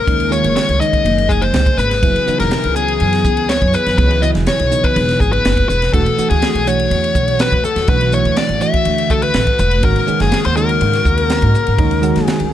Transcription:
Already playing: analog synth pad C#3 A#3, lead electric guitar A#4
0.06 upright bass D#2, reed electric piano D#3 G#3 C#4 D#4, analog synth pad G#4, kick, ride
0.20 ride
0.30 reed electric piano D#3 G#3 C#4 F4, lead electric guitar C#5, hi-hat pedal
0.44 upright bass F#1, ride
0.56 lead electric guitar C#5, snare, ride
0.69 upright bass C#2, ride
0.79 reed electric piano D#3 G#3 C#4 D#4, lead electric guitar D#5, hi-hat pedal
0.93 muted upright bass stroke, kick, ride
1.05 upright bass F#1, ride
1.18 ride
1.29 lead electric guitar G#4, kick, hi-hat pedal
1.42 lead electric guitar C5, ride
1.54 upright bass C#2, snare, ride
1.66 kick, ride
1.77 upright bass G#1, lead electric guitar B4, hi-hat pedal
1.91 snare, ride
2.02 upright bass F#1, reed electric piano C#3 F#3 B3 E4, analog synth pad E3 B3, kick, ride
2.16 ride
2.27 reed electric piano C#3 F#3 B3 D#4, muted upright bass stroke, hi-hat pedal
2.40 upright bass E1, lead electric guitar A#4, snare, ride
2.51 snare, ride
2.64 upright bass C#2, ride
2.75 reed electric piano C#3 F#3 B3 C#4, lead electric guitar G#4, hi-hat pedal
2.88 ride
3.00 upright bass F#2, ride
3.13 snare, ride
3.24 upright bass C#2, kick, hi-hat pedal
3.37 ride
3.49 lead electric guitar C#5, snare, ride
3.62 upright bass F#2, kick, ride
3.73 lead electric guitar B4, hi-hat pedal
3.86 upright bass F#2, snare, ride
3.98 upright bass C#2, reed electric piano C#3 F#3 B3 C#4, lead electric guitar B4, kick, ride
4.11 ride
4.22 reed electric piano C#3 F#3 B3 E4, lead electric guitar D#5, hi-hat pedal
4.35 upright bass E1, snare, ride
4.47 lead electric guitar C#5, snare, ride
4.59 upright bass B1, ride
4.70 reed electric piano C#3 F#3 B3 D#4, hi-hat pedal
4.84 lead electric guitar B4, muted upright bass stroke, kick, ride
4.96 upright bass E1, ride
5.09 snare, ride
5.20 upright bass G#1, lead electric guitar G#4, kick, hi-hat pedal
5.33 lead electric guitar B4, ride
5.45 upright bass F#1, snare, ride
5.57 kick, ride
5.69 upright bass E1, lead electric guitar B4, hi-hat pedal
5.82 snare, ride
5.92 upright bass E1, analog synth pad D3 A3 F#4, reed electric piano E3 A3 D4 F#4, lead electric guitar A4, kick, ride
6.06 ride
6.17 reed electric piano E3 A3 D4 F#4, muted upright bass stroke, hi-hat pedal
6.30 upright bass D2, lead electric guitar G#4, ride
6.42 snare, ride
6.55 upright bass B1, ride
6.66 reed electric piano E3 A3 D4 F#4, lead electric guitar C#5, hi-hat pedal
6.80 ride
6.91 upright bass E2, ride
7.04 ride
7.15 upright bass B1, kick, hi-hat pedal
7.28 ride
7.39 lead electric guitar B4, snare, ride
7.52 upright bass E2, kick, ride
7.64 lead electric guitar A4, hi-hat pedal
7.76 upright bass E2, snare, ride
7.88 upright bass B1, reed electric piano E3 A3 D4 F#4, lead electric guitar B4, kick, ride
8.01 ride
8.12 reed electric piano E3 A3 D4 E4, lead electric guitar C#5, hi-hat pedal
8.25 upright bass D2, ride
8.36 lead electric guitar D5, snare, ride
8.49 upright bass A1, ride
8.60 reed electric piano E3 A3 D4 F#4, lead electric guitar E5, hi-hat pedal
8.74 muted upright bass stroke, kick, ride
8.85 upright bass D2, ride
8.98 ride
9.10 lead electric guitar A4, kick, hi-hat pedal
9.22 lead electric guitar B4, ride
9.34 upright bass A1, snare, ride
9.47 kick, ride
9.58 upright bass E1, lead electric guitar B4, hi-hat pedal
9.71 ride
9.83 upright bass G#1, analog synth pad C#3 A#3 F#4, reed electric piano D#3 G#3 C#4 F#4, lead electric guitar A#4, kick, ride
9.96 ride
10.07 reed electric piano D#3 G#3 C#4 G#4, muted upright bass stroke, hi-hat pedal
10.20 upright bass F#1, lead electric guitar G#4, snare, ride
10.32 snare, ride
10.45 upright bass D#2, lead electric guitar C5, ride
10.56 reed electric piano D#3 G#3 C#4 D#4, lead electric guitar A#4, hi-hat pedal
10.69 ride
10.81 upright bass G#2, ride
10.93 snare, ride
11.05 upright bass D#2, kick, hi-hat pedal
11.18 ride
11.30 snare, ride
11.42 upright bass G#2, kick, ride
11.54 hi-hat pedal
11.67 upright bass G#2, ride
11.78 upright bass D#2, reed electric piano D#3 G#3 C#4 D#4, kick, ride
11.91 ride
12.02 reed electric piano D#3 G#3 C#4 F#4, hi-hat pedal
12.16 upright bass F#1, snare, ride
12.26 lead electric guitar G#4, snare, ride
12.40 upright bass C#2, ride

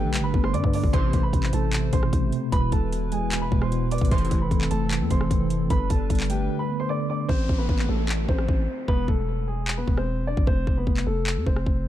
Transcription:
Already playing: tine electric piano D3 A3, analog synth pad G3 D4 A4 B4, grand piano G4 G5
0.04 808-style bass B1
0.14 tine electric piano D3, clap, closed hi-hat
0.19 808-style bass G1
0.24 grand piano B4 B5
0.34 808-style bass G1, tine electric piano B3, kick
0.44 grand piano C5 C6, cross-stick
0.54 808-style bass G2, tine electric piano D3, grand piano D5 D6, closed hi-hat
0.64 808-style bass G2, kick
0.73 tine electric piano D4, grand piano D5 D6, open hi-hat
0.84 808-style bass G1, kick
0.93 808-style bass A1, analog polysynth E2 C3 E3, tine electric piano C3, analog synth pad A3 E4 C5, grand piano C5 C6, kick, closed hi-hat
1.13 808-style bass A1, kick, closed hi-hat
1.23 grand piano B4 B5
1.33 808-style bass A1, tine electric piano C3, kick, closed hi-hat
1.43 clap
1.53 808-style bass A1, tine electric piano A3, grand piano A4 A5, closed hi-hat
1.73 tine electric piano C3, clap, closed hi-hat
1.93 808-style bass A1, tine electric piano B2, grand piano C5 C6, kick, closed hi-hat
2.03 cross-stick
2.12 808-style bass A1, tine electric piano C3, kick, closed hi-hat
2.32 tine electric piano C4, closed hi-hat
2.52 808-style bass E1, tine electric piano B2, analog synth pad E3 B4, grand piano B4 B5, kick, closed hi-hat
2.72 808-style bass E1, grand piano A4 A5, kick, closed hi-hat
2.92 tine electric piano B2, closed hi-hat
3.12 tine electric piano G#3, grand piano G#4 G#5, closed hi-hat
3.32 tine electric piano B2, clap, closed hi-hat
3.42 grand piano B4 B5
3.52 808-style bass E1, tine electric piano B3, kick
3.62 grand piano C5 C6, cross-stick
3.72 tine electric piano B2, closed hi-hat
3.91 tine electric piano B4, grand piano D5 D6, closed hi-hat, open hi-hat
3.98 808-style bass G#1, kick, closed hi-hat
4.05 closed hi-hat
4.11 808-style bass F1, analog polysynth A2 C3 E3, analog synth pad E3 C4 A4, tine electric piano E3, grand piano C5 C6, kick, closed hi-hat
4.18 closed hi-hat
4.25 closed hi-hat
4.31 808-style bass F1, kick, closed hi-hat
4.42 grand piano B4 B5
4.51 808-style bass F1, tine electric piano E3, kick, closed hi-hat
4.61 clap
4.71 808-style bass F1, tine electric piano A3, grand piano A4 A5, closed hi-hat
4.91 tine electric piano E3, clap, closed hi-hat
5.01 808-style bass F2
5.10 808-style bass F1, tine electric piano C4, grand piano C5 C6, kick, closed hi-hat
5.21 cross-stick
5.31 808-style bass F1, tine electric piano E3, kick, closed hi-hat
5.50 tine electric piano E4, closed hi-hat
5.70 808-style bass G1, tine electric piano D3, analog synth pad G3 D4 B4, grand piano B4 B5, kick, closed hi-hat
5.90 808-style bass G1, grand piano A4 A5, kick, closed hi-hat
6.10 808-style bass G1, tine electric piano D3, kick, closed hi-hat
6.15 closed hi-hat
6.20 clap, closed hi-hat
6.25 closed hi-hat
6.30 tine electric piano A3, grand piano G4 G5, closed hi-hat
6.50 tine electric piano D3
6.59 grand piano B4 B5
6.69 tine electric piano B3
6.80 grand piano C5 C6
6.89 tine electric piano D3, grand piano D5 D6
7.09 tine electric piano D4, grand piano D5 D6
7.29 808-style bass A1, grand piano C4 C5, kick, downlifter
7.49 808-style bass A1, kick
7.58 grand piano B3 B4
7.69 808-style bass A1, kick
7.79 clap
7.89 808-style bass A1, grand piano A3 A4
8.09 clap
8.29 808-style bass A1, grand piano C4 C5, kick
8.38 cross-stick
8.49 808-style bass A1, kick
8.88 808-style bass E1, grand piano B3 B4, kick
9.08 808-style bass E1, grand piano A3 A4, kick
9.48 grand piano G#3 G#4
9.68 clap
9.77 grand piano B3 B4
9.88 808-style bass E1, kick
9.97 grand piano C4 C5, cross-stick
10.27 grand piano D4 D5
10.37 808-style bass G#1, kick
10.47 808-style bass F1, grand piano C4 C5, kick
10.67 808-style bass F1, kick
10.77 grand piano B3 B4
10.87 808-style bass F1, kick
10.97 clap
11.07 808-style bass F1, grand piano A3 A4
11.27 clap
11.37 808-style bass F2
11.46 808-style bass F1, grand piano C4 C5, kick
11.56 cross-stick
11.66 808-style bass F1, kick

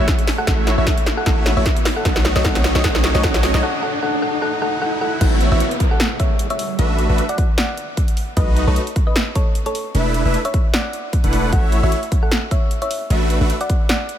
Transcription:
Already playing: riser
0.00 supersaw synth A3 E4 F#4 C#5 E5, synth pluck C#5 E5
0.08 kick, snare, closed hi-hat
0.19 closed hi-hat
0.27 snare, open hi-hat
0.38 synth pluck A4 F#5
0.47 808-style bass A1, supersaw synth A3 E4 F#4 C#5 E5, synth pluck A4, kick, snare, closed hi-hat
0.67 snare, closed hi-hat
0.78 808-style bass A1, supersaw synth A3 E4 F#4 C#5 E5, synth pluck C#5 E5
0.87 kick, snare, closed hi-hat
0.98 closed hi-hat
1.06 snare, closed hi-hat
1.17 synth pluck A4 F#5
1.26 808-style bass A1, supersaw synth A3 E4 F#4 C#5 E5, synth pluck A4 F#5, kick, snare, closed hi-hat
1.46 snare, closed hi-hat
1.57 808-style bass A1, supersaw synth A3 E4 F#4 C#5 E5, synth pluck C#5 E5
1.66 kick, snare, closed hi-hat
1.76 closed hi-hat
1.85 snare, open hi-hat
1.96 synth pluck A4 F#5
2.05 808-style bass B1, supersaw synth A3 D#4 F#4 C#5 D#5, synth pluck A4, kick, snare, closed hi-hat
2.16 snare
2.25 snare, closed hi-hat
2.36 808-style bass B1, supersaw synth A3 D#4 F#4 C#5 D#5, synth pluck C#5 D#5, snare
2.44 808-style bass B1, supersaw synth A3 D#4 F#4 C#5 D#5, synth pluck A4 F#5, kick, snare, closed hi-hat
2.55 snare, closed hi-hat
2.64 snare, closed hi-hat
2.75 808-style bass B1, supersaw synth A3 D#4 F#4 C#5 D#5, synth pluck C#5 D#5, snare
2.84 supersaw synth A3 D#4 F#4 C#5 D#5, synth pluck A4 F#5, kick, snare, closed hi-hat
2.95 snare
3.04 snare, closed hi-hat
3.15 808-style bass B1, supersaw synth A3 D#4 F#4 C#5 D#5, synth pluck C#5 D#5, snare
3.23 808-style bass B1, supersaw synth A3 D#4 F#4 C#5 D#5, synth pluck A4 F#5, kick, snare, closed hi-hat
3.34 snare, closed hi-hat
3.43 snare, open hi-hat
3.54 808-style bass B1, supersaw synth A3 D#4 F#4 C#5 D#5, synth pluck C#5 D#5, snare
3.63 synth pluck A4 F#5
3.83 synth pluck A4 F#5
4.02 synth pluck A4 F#5
4.22 synth pluck A4 F#5
4.42 synth pluck A4 F#5
4.62 synth pluck A4 F#5
4.82 synth pluck A4 F#5
5.01 synth pluck A4 F#5
5.21 808-style bass A1, supersaw synth A3 E4 F#4 C#5 E5, synth pluck A4 F#5, kick, closed hi-hat, crash, downlifter
5.41 closed hi-hat
5.52 808-style bass A1, supersaw synth A3 E4 F#4 C#5 E5, synth pluck C#5 E5
5.60 closed hi-hat
5.71 closed hi-hat
5.80 kick, closed hi-hat
5.91 synth pluck A4 F#5
6.00 snare, closed hi-hat
6.20 synth pluck C#5 E5, kick, closed hi-hat
6.39 closed hi-hat
6.50 synth pluck C#5 E5, closed hi-hat
6.59 open hi-hat
6.79 808-style bass A1, supersaw synth A3 D4 F#4 B4 E5, closed hi-hat
6.99 closed hi-hat
7.09 808-style bass A1, supersaw synth A3 D4 F#4 B4 E5
7.18 closed hi-hat
7.29 synth pluck D5 F#5, closed hi-hat
7.38 kick, closed hi-hat
7.58 synth pluck D5 F#5, snare, closed hi-hat
7.77 closed hi-hat
7.97 kick, closed hi-hat
8.08 closed hi-hat
8.17 open hi-hat
8.37 808-style bass B1, supersaw synth A3 D#4 F#4 B4 D#5, synth pluck B4 D#5, kick, closed hi-hat
8.56 closed hi-hat
8.67 808-style bass B1, supersaw synth A3 D#4 F#4 B4 D#5, synth pluck A4 C#5
8.76 closed hi-hat
8.87 closed hi-hat
8.96 kick, closed hi-hat
9.07 synth pluck B4 D#5
9.16 snare, closed hi-hat
9.35 synth pluck A4 C#5, kick, closed hi-hat
9.55 closed hi-hat
9.66 synth pluck A4 C#5, closed hi-hat
9.75 open hi-hat
9.95 808-style bass E1, supersaw synth A3 D4 E4 B4 E5, closed hi-hat
10.14 closed hi-hat
10.25 808-style bass E1, supersaw synth A3 D4 E4 B4 E5
10.34 closed hi-hat
10.45 synth pluck C#5 E5, closed hi-hat
10.54 kick, closed hi-hat
10.74 synth pluck D5 F#5, snare, closed hi-hat
10.93 closed hi-hat
11.13 kick, closed hi-hat
11.24 808-style bass E1, supersaw synth A3 D4 E4 B4 F#5, closed hi-hat
11.33 open hi-hat
11.52 808-style bass A1, supersaw synth A3 E4 F#4 C#5 E5, synth pluck A4 F#5, kick, closed hi-hat
11.72 closed hi-hat
11.83 808-style bass A1, supersaw synth A3 E4 F#4 C#5 E5, synth pluck C#5 E5
11.92 closed hi-hat
12.03 closed hi-hat
12.12 kick, closed hi-hat
12.23 synth pluck A4 F#5
12.31 snare, closed hi-hat
12.51 synth pluck C#5 E5, kick, closed hi-hat
12.71 closed hi-hat
12.82 synth pluck C#5 E5, closed hi-hat
12.91 open hi-hat
13.10 808-style bass A1, supersaw synth A3 D4 F#4 B4 E5, closed hi-hat
13.30 closed hi-hat
13.41 808-style bass A1, supersaw synth A3 D4 F#4 B4 E5
13.50 closed hi-hat
13.61 synth pluck D5 F#5, closed hi-hat
13.70 kick, closed hi-hat
13.89 synth pluck D5 F#5, snare, closed hi-hat
14.09 closed hi-hat

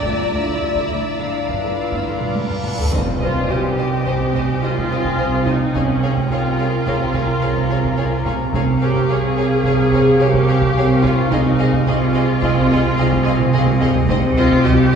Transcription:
Already playing: violin section D5 A#5 E6, synth texture D5
0.02 double bass section D2, cello section D2, marimba D3, viola section A3, synth texture E4 E5, french horn section F4, violin section E5, taiko, reverse cymbal
0.18 cello section D2, viola section G3
0.31 double bass section D2, cello section D2, marimba D3, viola section A3
0.45 cello section D2, viola section A3, taiko
0.61 double bass section D2, cello section D2, viola section G3, marimba D4
0.75 cello section D2, viola section A3, taiko
0.89 double bass section D2, cello section D2, marimba D3, viola section G3, french horn section E4
1.19 double bass section G1, cello section G2, marimba G2, viola section B3, french horn section D4, synth texture F4 B4, violin section F5
1.48 double bass section G1, marimba G2, cello section G2, viola section B3, taiko
1.63 cello section G2, viola section A3
1.78 marimba G2
1.92 cello section G2, viola section B3, taiko
2.06 double bass section G1, cello section G2, marimba G3, viola section A3
2.21 cello section G2, viola section B3, taiko mid
2.35 double bass section G1, marimba G2, cello section G2, viola section A3, taiko high
2.49 taiko low-mid
2.64 double bass section G1, cello section G2, marimba G2, viola section B3, taiko mid
2.79 cello section G2, viola section A3, taiko low
2.93 double bass section C2, marimba C3, cello section C3, french horn section D#3 C4, synth texture D#4 D#5, violin section C5 D#5 G5 G#5, taiko, impact
3.21 marimba C4, viola section F4, violin section C5 D#5
3.35 taiko
3.50 double bass section C2, cello section C3, marimba C3, viola section G4, violin section C5 D#5
3.78 marimba C3, violin section C5 D#5
4.06 double bass section C2, marimba C3, cello section C3, violin section C5 D#5, taiko
4.34 marimba C3, violin section C5 D#5, taiko
4.62 double bass section C2, marimba C3, cello section C3, french horn section D#3 C4, viola section F4, violin section C5 D#5
4.77 taiko
4.90 marimba C3, violin section C5 D#5
5.04 taiko
5.18 double bass section C2, cello section C3, marimba C4, violin section C5 D#5
5.46 marimba C3, viola section D#4, violin section C5 D#5, taiko
5.73 double bass section C2, marimba C3, cello section C3, french horn section F3 C#4, viola section C#4, violin section G#4 C#5 F5, synth texture A#4 A#5, taiko
6.03 marimba C4, violin section G#4 C#5 F5
6.16 taiko
6.31 double bass section C2, marimba C3, cello section C3, viola section F4, violin section G#4 C#5 F5
6.48 violin section G5
6.58 marimba C3, violin section G#4 C#5 F5
6.86 double bass section C2, marimba C3, cello section C3, violin section G#4 C#5 F5, taiko
7.13 marimba C3, violin section G#4 C#5 F5, taiko
7.41 double bass section C2, marimba C3, cello section C3, french horn section F3 C#4, violin section G#4 C#5 F5
7.56 taiko
7.70 marimba C3, violin section G#4 C#5 F5
7.83 taiko
7.97 double bass section C2, cello section C3, marimba C4, violin section G#4 C#5 F5
8.25 marimba C3, violin section G#4 C#5 F5, taiko
8.53 double bass section C2, marimba C3, cello section C3, french horn section F3 C#4, violin section G#4 C#5 F5 C#6 D6, synth texture F5, taiko
8.80 marimba C4, viola section G4, violin section G#4 C#5 F5
8.95 taiko
9.08 double bass section C2, cello section C3, viola section G#4, violin section G#4 C#5 F5
9.36 marimba C3, violin section G#4 C#5 F5
9.63 double bass section C2, marimba C3, cello section C3, violin section G#4 C#5 F5, taiko
9.91 marimba C3, violin section G#4 C#5 F5, taiko
10.18 double bass section C2, marimba C3, cello section C3, french horn section F3 C#4, viola section G4, violin section G#4 C#5 F5
10.33 taiko
10.48 marimba C3, violin section G#4 C#5 F5
10.62 taiko
10.75 double bass section C2, cello section C3, marimba C4, violin section G#4 C#5 F5
11.03 marimba C3, viola section F4, violin section G#4 C#5 F5, taiko
11.28 double bass section C2, cello section C3, marimba C3, french horn section G#3 D#4, synth texture C4 G#4 D#5, viola section D#4, violin section G#4 D#5 F5, taiko
11.59 marimba C4, violin section G#4 D#5 F5
11.73 taiko
11.86 double bass section C2, marimba C3, cello section C3, viola section F4, violin section G#4 D#5 F5
12.14 marimba C3, violin section G#4 D#5 F5
12.41 double bass section C2, marimba C3, cello section C3, violin section G#4 D#5 F5, taiko
12.71 violin section G#4 D#5 F5, taiko
12.97 double bass section C2, cello section C3, marimba C3, french horn section G#3 D#4, violin section G#4 D#5 F5
13.12 taiko
13.24 marimba C3, violin section G#4 D#5
13.28 violin section F5
13.39 taiko mid
13.53 double bass section C2, cello section C3, marimba C4, violin section G#4 D#5 F5, taiko low-mid
13.67 taiko high
13.81 marimba C3, violin section G#4 D#5 F5, taiko low-mid
13.95 taiko low
14.09 double bass section C2, marimba C3, cello section C3, french horn section G3 D#4, synth texture G4, violin section C5 D#5, taiko
14.23 taiko low
14.37 marimba C4, viola section F4, violin section C5 D#5, taiko low
14.51 taiko
14.65 double bass section C2, marimba C3, cello section C3, viola section G4, violin section C5 D#5, taiko low
14.92 violin section D#5

